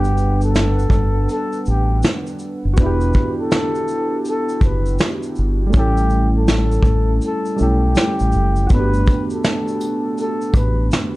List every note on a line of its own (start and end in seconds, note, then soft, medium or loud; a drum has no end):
0.00 0.89 G1 loud
0.00 2.71 G3 medium
0.00 2.72 B3 medium
0.00 2.74 D4 medium
0.00 0.39 G4 loud
0.00 2.77 B4 medium
0.00 2.76 F#5 medium
0.04 shaker soft
0.17 shaker soft
0.41 1.26 A4 medium
0.41 shaker medium
0.55 snare medium
0.55 closed hi-hat medium
0.55 shaker medium
0.79 shaker soft
0.90 1.26 G1 medium
0.90 kick medium
0.90 shaker soft
1.29 1.64 A4 medium
1.29 closed hi-hat medium
1.29 shaker soft
1.53 shaker soft
1.66 2.02 A1 medium
1.66 2.01 G4 medium
1.66 shaker soft
2.03 snare loud
2.03 closed hi-hat medium
2.03 shaker medium
2.27 shaker soft
2.39 shaker soft
2.65 2.78 F#1 medium
2.73 5.69 B3 medium
2.73 5.68 F#4 medium
2.73 closed hi-hat medium
2.73 shaker medium
2.78 3.13 E1 loud
2.78 5.71 D4 medium
2.78 3.35 B4 medium
2.78 kick loud
2.83 5.72 E4 medium
2.83 5.74 G4 medium
3.01 shaker soft
3.13 kick medium
3.13 shaker soft
3.40 4.23 A4 medium
3.51 snare loud
3.51 closed hi-hat medium
3.51 shaker medium
3.75 shaker soft
3.88 shaker soft
4.25 4.60 A4 medium
4.25 closed hi-hat soft
4.25 shaker medium
4.49 shaker soft
4.61 4.97 F#1 medium
4.61 4.97 B4 medium
4.61 kick medium
4.61 shaker soft
4.86 shaker soft
4.99 snare loud
4.99 closed hi-hat medium
4.99 shaker medium
5.23 shaker soft
5.35 5.72 G1 medium
5.35 shaker soft
5.67 7.52 G3 medium
5.67 7.53 A3 medium
5.73 6.81 A1 loud
5.73 7.55 C#4 medium
5.73 7.56 E4 medium
5.73 6.32 G4 medium
5.73 kick loud
5.73 closed hi-hat medium
5.73 shaker medium
5.79 7.58 A4 medium
5.97 shaker soft
6.10 shaker soft
6.37 7.19 A4 medium
6.48 snare loud
6.48 closed hi-hat medium
6.48 shaker medium
6.72 shaker soft
6.83 7.19 A1 medium
6.83 kick medium
6.83 shaker soft
7.21 7.57 A4 medium
7.21 closed hi-hat medium
7.21 shaker medium
7.45 shaker soft
7.56 8.69 G3 medium
7.56 8.68 A3 soft
7.56 8.70 C#4 soft
7.56 shaker soft
7.61 7.94 B1 medium
7.61 8.71 E4 soft
7.61 8.67 G4 medium
7.61 8.72 A4 soft
7.95 snare loud
7.95 closed hi-hat medium
7.95 shaker medium
8.19 8.33 A1 medium
8.19 shaker soft
8.32 8.68 F#1 medium
8.32 shaker soft
8.56 shaker soft
8.67 11.16 A3 medium
8.67 11.16 F#4 medium
8.67 kick loud
8.67 closed hi-hat medium
8.67 shaker medium
8.71 9.05 G1 loud
8.71 11.16 B3 medium
8.71 9.28 B4 medium
8.76 11.16 D4 medium
8.76 11.16 G4 medium
8.94 shaker soft
9.06 kick medium
9.06 tambourine soft
9.06 shaker soft
9.30 10.16 A4 medium
9.30 shaker soft
9.44 snare loud
9.44 closed hi-hat medium
9.44 shaker medium
9.68 shaker soft
9.81 tambourine medium
9.81 shaker soft
10.18 10.59 A4 medium
10.18 closed hi-hat medium
10.18 shaker medium
10.41 shaker soft
10.54 10.89 A1 medium
10.54 10.90 B4 medium
10.54 kick medium
10.54 tambourine soft
10.54 shaker medium
10.91 snare loud
10.91 closed hi-hat medium
10.91 shaker medium